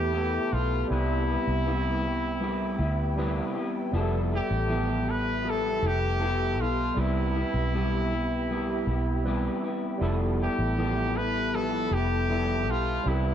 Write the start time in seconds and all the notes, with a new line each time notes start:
Already playing: E2 A3 B3 E4 G4 A4 B4 E5 A5 B5
0.14 B3 E4 A4
0.52 B1 B3 F4 A4
0.88 C2 C3 G3 C4 E4 G4 G5 B5
0.92 G3 B3 E4 G4 B4
1.27 B3 E4 G4
1.47 C2
1.66 C3 G3 B3 E4 G4
2.03 B3 E4 G4
2.40 G3 B3 E4 G4
2.79 D2 B3 E4 G4
3.16 C3 G3 B3 C4 E4 G4 B4
3.55 B3 E4 G4
3.92 F1 F3 G3 B3 E4 A4 E5 A5 B5
3.97 G#4
4.03 A4
4.32 B3 E4 G4 A4
4.51 A1
4.68 F3 B3 E4 A4
5.07 B3 E4 A4 B4
5.43 F3 B3 E4 A4
5.50 A4
5.82 F1 B3 E4 A4
5.87 G4
6.20 F3 B3 E4 A4
6.57 B1 B3 F4 A4
6.94 C2 C3 G3 B3 C4 E4 G4 G5
7.00 E4 B4
7.34 B3 E4 G4
7.54 B1
7.75 G3 B3 E4 G4
8.11 B3 E4 G4
8.50 G3 B3 E4 G4
8.87 B1 E4 G4
8.91 B3
9.23 G3 C4 E4 B4
9.28 B3 E4 G4
9.64 B3 E4 G4
9.98 F1 F3 G3 B3 E4 A5
10.02 B3 E4 A4
10.40 B3 E4 G4 A4
10.59 A1
10.77 F3 B3 E4 A4
11.17 B3 E4 A4 B4
11.54 F3 B3 E4 A4
11.91 F1 B3 E4 G4 A4
12.28 F3 G3 B3 E4 A4 E5
12.68 B1 B3 F4 A4
13.03 C2 C3 G3 C4 E4 G5
13.07 B3 E4 G4 A#4
13.14 B4